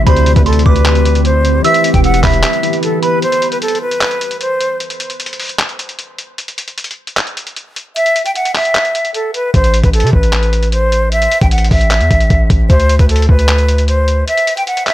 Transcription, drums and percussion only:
0.07 kick, closed hi-hat
0.16 closed hi-hat
0.26 closed hi-hat
0.36 kick, closed hi-hat
0.46 closed hi-hat
0.53 closed hi-hat
0.59 closed hi-hat
0.66 kick
0.76 closed hi-hat
0.85 clap, closed hi-hat
0.95 closed hi-hat
1.05 closed hi-hat
1.15 closed hi-hat
1.25 closed hi-hat
1.45 closed hi-hat
1.64 closed hi-hat
1.74 closed hi-hat
1.84 closed hi-hat
1.94 kick, closed hi-hat
2.04 closed hi-hat
2.14 closed hi-hat
2.24 kick, clap, open hi-hat
2.34 closed hi-hat
2.43 clap, closed hi-hat
2.53 closed hi-hat
2.63 closed hi-hat
2.73 closed hi-hat
2.83 closed hi-hat
3.03 closed hi-hat
3.22 closed hi-hat
3.32 closed hi-hat
3.42 closed hi-hat
3.52 closed hi-hat
3.62 closed hi-hat
3.68 closed hi-hat
3.75 closed hi-hat
3.91 closed hi-hat
4.01 clap, closed hi-hat
4.11 closed hi-hat
4.21 closed hi-hat
4.31 closed hi-hat
4.41 closed hi-hat
4.61 closed hi-hat
4.80 closed hi-hat
4.90 closed hi-hat
5.00 closed hi-hat
5.10 closed hi-hat
5.20 closed hi-hat
5.26 closed hi-hat
5.33 closed hi-hat
5.40 open hi-hat
5.49 closed hi-hat
5.59 clap, closed hi-hat
5.69 closed hi-hat
5.79 closed hi-hat
5.89 closed hi-hat
5.99 closed hi-hat
6.18 closed hi-hat
6.38 closed hi-hat
6.48 closed hi-hat
6.58 closed hi-hat
6.68 closed hi-hat
6.78 closed hi-hat
6.84 closed hi-hat
6.91 closed hi-hat
7.07 closed hi-hat
7.17 clap, closed hi-hat
7.27 closed hi-hat
7.37 closed hi-hat
7.47 closed hi-hat
7.56 closed hi-hat
7.76 closed hi-hat
7.96 closed hi-hat
8.06 closed hi-hat
8.16 closed hi-hat
8.26 closed hi-hat
8.36 closed hi-hat
8.45 closed hi-hat
8.55 clap, open hi-hat
8.65 closed hi-hat
8.75 clap, closed hi-hat
8.85 closed hi-hat
8.95 closed hi-hat
9.05 closed hi-hat
9.14 closed hi-hat
9.34 closed hi-hat
9.54 kick, closed hi-hat
9.64 closed hi-hat
9.74 closed hi-hat
9.84 kick, closed hi-hat
9.93 closed hi-hat
10.00 closed hi-hat
10.07 closed hi-hat
10.13 kick
10.23 closed hi-hat
10.33 clap, closed hi-hat
10.43 closed hi-hat
10.53 closed hi-hat
10.63 closed hi-hat
10.72 closed hi-hat
10.92 closed hi-hat
11.12 closed hi-hat
11.22 closed hi-hat
11.32 closed hi-hat
11.41 kick, closed hi-hat
11.51 closed hi-hat
11.58 closed hi-hat
11.64 closed hi-hat
11.71 kick, open hi-hat
11.81 closed hi-hat
11.91 clap, closed hi-hat
12.01 closed hi-hat
12.11 kick, closed hi-hat
12.20 closed hi-hat
12.30 kick, closed hi-hat
12.50 kick, closed hi-hat
12.70 kick, closed hi-hat
12.80 closed hi-hat
12.89 closed hi-hat
12.99 kick, closed hi-hat
13.09 closed hi-hat
13.16 closed hi-hat
13.22 closed hi-hat
13.29 kick
13.39 closed hi-hat
13.49 clap, closed hi-hat
13.58 closed hi-hat
13.69 closed hi-hat
13.78 closed hi-hat
13.88 closed hi-hat
14.08 closed hi-hat
14.28 closed hi-hat
14.37 closed hi-hat
14.47 closed hi-hat
14.57 closed hi-hat
14.67 closed hi-hat
14.77 closed hi-hat
14.87 clap, open hi-hat

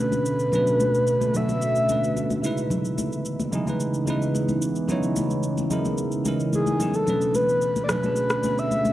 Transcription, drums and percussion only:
0.12 high conga, shaker
0.26 shaker
0.39 shaker
0.52 low conga, shaker
0.67 shaker
0.80 high conga, shaker
0.95 shaker
1.07 shaker
1.21 high conga, shaker
1.34 low conga, shaker
1.49 high conga, shaker
1.62 shaker
1.75 shaker
1.89 high conga, shaker
2.04 shaker
2.17 high conga, shaker
2.30 high conga, shaker
2.44 shaker
2.57 shaker
2.70 low conga, shaker
2.85 shaker
2.98 high conga, shaker
3.12 shaker
3.25 shaker
3.40 high conga, shaker
3.52 low conga, shaker
3.67 high conga, shaker
3.80 shaker
3.94 shaker
4.07 high conga, shaker
4.22 shaker
4.35 high conga, shaker
4.49 high conga, shaker
4.62 shaker
4.75 shaker
4.89 low conga, shaker
5.03 shaker
5.16 high conga, shaker
5.30 shaker
5.43 shaker
5.58 high conga, shaker
5.70 low conga, shaker
5.85 high conga, shaker
5.98 shaker
6.12 shaker
6.25 high conga, shaker
6.40 shaker
6.53 high conga, shaker
6.67 high conga, shaker
6.80 low conga, shaker
6.94 shaker
7.07 low conga, shaker
7.21 shaker
7.34 high conga, shaker
7.49 shaker
7.62 shaker
7.76 high conga, shaker
7.89 cross-stick, low conga, shaker
8.03 high conga, shaker
8.16 shaker
8.30 cross-stick, shaker
8.43 high conga, shaker
8.58 shaker
8.71 high conga, shaker
8.85 high conga, shaker

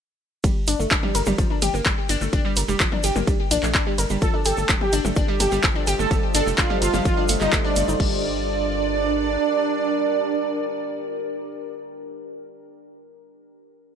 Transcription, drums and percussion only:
0.44 kick, ride, shaker
0.67 open hi-hat, ride, shaker
0.80 shaker
0.91 kick, clap, ride, shaker
1.03 mid tom
1.15 open hi-hat, ride, shaker
1.26 mid tom, shaker
1.38 kick, ride, shaker
1.62 open hi-hat, mid tom, ride, shaker
1.74 shaker
1.85 kick, clap, ride, shaker
2.09 open hi-hat, ride, shaker
2.22 shaker
2.33 kick, ride, shaker
2.56 open hi-hat, ride, shaker
2.68 shaker
2.80 kick, clap, ride, shaker
2.92 mid tom
3.03 open hi-hat, ride, shaker
3.16 mid tom, shaker
3.27 kick, ride, shaker
3.51 open hi-hat, ride, shaker
3.63 clap, shaker
3.75 kick, clap, ride, shaker
3.98 open hi-hat, ride, shaker
4.10 shaker
4.22 kick, ride, shaker
4.45 open hi-hat, ride, shaker
4.57 shaker
4.69 kick, clap, ride, shaker
4.81 mid tom
4.93 open hi-hat, ride, shaker
5.05 mid tom, shaker
5.16 kick, ride, shaker
5.40 open hi-hat, mid tom, ride, shaker
5.52 shaker
5.63 kick, clap, ride, shaker
5.87 open hi-hat, ride, shaker
6.00 shaker
6.11 kick, ride, shaker
6.35 open hi-hat, ride, shaker
6.47 shaker
6.58 kick, clap, ride, shaker
6.70 mid tom
6.82 open hi-hat, ride, shaker
6.94 mid tom, shaker
7.05 kick, ride, shaker
7.29 open hi-hat, ride, shaker
7.41 clap, shaker
7.53 kick, clap, ride, shaker
7.76 open hi-hat, ride, shaker
7.89 shaker
8.00 kick, crash

